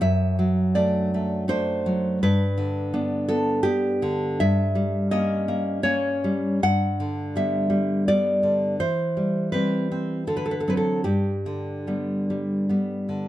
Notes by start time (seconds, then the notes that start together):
0.01 F#2 E5
0.39 F#3
0.75 A3 D4 D5
1.14 A3
1.48 A3 D4 C5
1.86 F#3
2.23 G2 B4
2.58 D3
2.94 B3 D4
3.28 B3 A4
3.63 B3 D4 G4
4.02 D3
4.40 G2 E5
4.75 G3
5.11 A#3 C#4 D#5
5.48 A#3
5.83 A#3 C#4 C#5
6.24 G3
6.63 G2 F#5
7.00 D3
7.36 G3 B3 E5
7.70 G3
8.08 G3 B3 D5
8.43 D3
8.80 E3 C5
9.17 G3
9.52 G3 C4 B4
9.92 C4
10.27 D3 A4
10.37 B4
10.46 A4
10.51 B4
10.60 A4
10.68 F#3 C4 B4
10.77 A4
11.04 G2 G4
11.46 D3
11.87 G3 B3
12.30 G3
12.69 G3 B3
13.09 D3